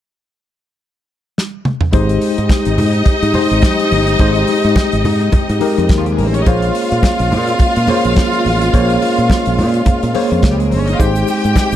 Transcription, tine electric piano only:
0, 0, Header, 1, 2, 480
1, 0, Start_track
1, 0, Tempo, 566038
1, 1642, Time_signature, 4, 2, 24, 8
1, 9972, End_track
2, 0, Start_track
2, 0, Title_t, "Tine electric piano"
2, 0, Program_c, 0, 4
2, 1632, Note_on_c, 0, 56, 84
2, 1636, Note_on_c, 0, 63, 67
2, 1639, Note_on_c, 0, 67, 71
2, 1644, Note_on_c, 0, 72, 88
2, 1779, Control_c, 0, 64, 127
2, 2378, Note_off_c, 0, 56, 0
2, 2380, Note_off_c, 0, 63, 0
2, 2382, Note_off_c, 0, 67, 0
2, 2384, Note_off_c, 0, 72, 0
2, 2830, Note_on_c, 0, 56, 72
2, 2834, Note_on_c, 0, 63, 72
2, 2838, Note_on_c, 0, 67, 65
2, 2840, Note_on_c, 0, 72, 88
2, 3400, Note_off_c, 0, 56, 0
2, 3402, Note_off_c, 0, 63, 0
2, 3404, Note_off_c, 0, 67, 0
2, 3405, Note_off_c, 0, 72, 0
2, 3554, Note_on_c, 0, 56, 78
2, 3559, Note_on_c, 0, 63, 74
2, 3563, Note_on_c, 0, 67, 67
2, 3567, Note_on_c, 0, 72, 83
2, 4300, Note_off_c, 0, 56, 0
2, 4303, Note_off_c, 0, 63, 0
2, 4305, Note_off_c, 0, 67, 0
2, 4307, Note_off_c, 0, 72, 0
2, 4752, Note_on_c, 0, 56, 68
2, 4756, Note_on_c, 0, 63, 78
2, 4760, Note_on_c, 0, 67, 75
2, 4764, Note_on_c, 0, 70, 84
2, 5321, Note_off_c, 0, 56, 0
2, 5323, Note_off_c, 0, 63, 0
2, 5325, Note_off_c, 0, 67, 0
2, 5327, Note_off_c, 0, 70, 0
2, 5475, Note_on_c, 0, 58, 71
2, 5481, Note_on_c, 0, 68, 73
2, 5483, Note_on_c, 0, 72, 78
2, 5488, Note_on_c, 0, 73, 87
2, 5497, Control_c, 0, 64, 0
2, 5628, Control_c, 0, 64, 127
2, 6220, Note_off_c, 0, 58, 0
2, 6224, Note_off_c, 0, 68, 0
2, 6225, Note_off_c, 0, 72, 0
2, 6227, Note_off_c, 0, 73, 0
2, 6682, Note_on_c, 0, 58, 80
2, 6686, Note_on_c, 0, 68, 75
2, 6692, Note_on_c, 0, 72, 70
2, 6694, Note_on_c, 0, 73, 79
2, 7246, Note_off_c, 0, 58, 0
2, 7248, Note_off_c, 0, 68, 0
2, 7251, Note_off_c, 0, 72, 0
2, 7252, Note_off_c, 0, 73, 0
2, 7406, Note_on_c, 0, 58, 76
2, 7409, Note_on_c, 0, 68, 66
2, 7414, Note_on_c, 0, 72, 75
2, 7417, Note_on_c, 0, 73, 92
2, 8145, Note_off_c, 0, 58, 0
2, 8146, Note_off_c, 0, 68, 0
2, 8149, Note_off_c, 0, 72, 0
2, 8150, Note_off_c, 0, 73, 0
2, 8599, Note_on_c, 0, 58, 71
2, 8604, Note_on_c, 0, 68, 68
2, 8611, Note_on_c, 0, 72, 70
2, 8613, Note_on_c, 0, 73, 81
2, 9163, Note_off_c, 0, 58, 0
2, 9165, Note_off_c, 0, 68, 0
2, 9168, Note_off_c, 0, 72, 0
2, 9170, Note_off_c, 0, 73, 0
2, 9321, Note_on_c, 0, 56, 79
2, 9324, Note_on_c, 0, 63, 73
2, 9328, Note_on_c, 0, 67, 78
2, 9331, Note_on_c, 0, 72, 85
2, 9333, Control_c, 0, 64, 0
2, 9480, Control_c, 0, 64, 127
2, 9972, Note_off_c, 0, 56, 0
2, 9972, Note_off_c, 0, 63, 0
2, 9972, Note_off_c, 0, 67, 0
2, 9972, Note_off_c, 0, 72, 0
2, 9972, End_track
0, 0, End_of_file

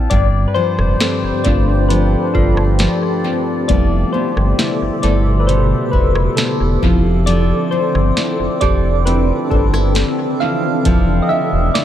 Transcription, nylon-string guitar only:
0, 0, Header, 1, 2, 480
1, 0, Start_track
1, 0, Tempo, 895522
1, 58, Time_signature, 4, 2, 24, 8
1, 6349, End_track
2, 0, Start_track
2, 0, Title_t, "Nylon-string guitar"
2, 0, Program_c, 0, 24
2, 0, Note_on_c, 0, 53, 81
2, 0, Note_on_c, 0, 60, 62
2, 0, Note_on_c, 0, 64, 58
2, 0, Note_on_c, 0, 69, 55
2, 58, Note_off_c, 0, 53, 0
2, 58, Note_on_c, 0, 43, 87
2, 106, Note_off_c, 0, 69, 0
2, 107, Note_off_c, 0, 64, 0
2, 298, Note_on_c, 0, 53, 58
2, 535, Note_off_c, 0, 60, 0
2, 537, Note_on_c, 0, 60, 64
2, 778, Note_on_c, 0, 62, 72
2, 1017, Note_off_c, 0, 53, 0
2, 1019, Note_on_c, 0, 53, 68
2, 1256, Note_off_c, 0, 60, 0
2, 1258, Note_on_c, 0, 60, 60
2, 1496, Note_off_c, 0, 53, 0
2, 1498, Note_on_c, 0, 53, 66
2, 1736, Note_off_c, 0, 60, 0
2, 1738, Note_on_c, 0, 60, 62
2, 1977, Note_off_c, 0, 53, 0
2, 1978, Note_off_c, 0, 43, 0
2, 1979, Note_on_c, 0, 53, 84
2, 2026, Note_off_c, 0, 62, 0
2, 2216, Note_off_c, 0, 60, 0
2, 2219, Note_on_c, 0, 59, 62
2, 2458, Note_on_c, 0, 64, 65
2, 2698, Note_on_c, 0, 69, 68
2, 2932, Note_off_c, 0, 59, 0
2, 2939, Note_on_c, 0, 59, 66
2, 3176, Note_off_c, 0, 64, 0
2, 3179, Note_on_c, 0, 64, 60
2, 3412, Note_off_c, 0, 59, 0
2, 3418, Note_on_c, 0, 59, 68
2, 3656, Note_off_c, 0, 53, 0
2, 3658, Note_on_c, 0, 53, 80
2, 3706, Note_off_c, 0, 59, 0
2, 3897, Note_off_c, 0, 53, 0
2, 3899, Note_on_c, 0, 53, 86
2, 3915, Note_off_c, 0, 64, 0
2, 4139, Note_on_c, 0, 60, 60
2, 4378, Note_on_c, 0, 64, 67
2, 4574, Note_off_c, 0, 69, 0
2, 4618, Note_on_c, 0, 69, 73
2, 4856, Note_off_c, 0, 60, 0
2, 4858, Note_on_c, 0, 60, 66
2, 5096, Note_off_c, 0, 64, 0
2, 5099, Note_on_c, 0, 62, 65
2, 5218, Note_off_c, 0, 62, 0
2, 5218, Note_on_c, 0, 64, 56
2, 5337, Note_off_c, 0, 60, 0
2, 5339, Note_on_c, 0, 60, 68
2, 5573, Note_off_c, 0, 64, 0
2, 5579, Note_on_c, 0, 64, 62
2, 5813, Note_off_c, 0, 53, 0
2, 5819, Note_on_c, 0, 53, 93
2, 6057, Note_off_c, 0, 60, 0
2, 6059, Note_on_c, 0, 60, 56
2, 6291, Note_off_c, 0, 64, 0
2, 6298, Note_on_c, 0, 64, 66
2, 6349, Note_off_c, 0, 53, 0
2, 6349, Note_off_c, 0, 60, 0
2, 6349, Note_off_c, 0, 64, 0
2, 6349, Note_off_c, 0, 69, 0
2, 6349, End_track
0, 0, End_of_file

